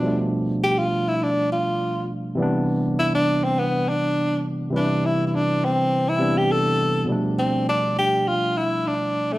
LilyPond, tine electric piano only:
\new Staff \with { instrumentName = "Tine electric piano" } { \clef bass \time 4/4 \key c \major \tempo 4 = 102 <b, f g a d'>1 | <c e g b d'>1 | <c e g e' b'>2~ <c e g e' b'>8 <c e g b d'>4. | <b, f g a d'>1 | }